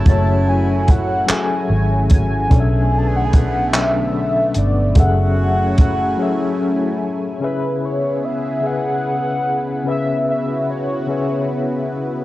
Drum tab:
HH |x-xx-x|x-xx-x|x-x---|------|
CP |---x--|---x--|------|------|
BD |o-o--o|o-o---|o-o---|------|

HH |------|
CP |------|
BD |------|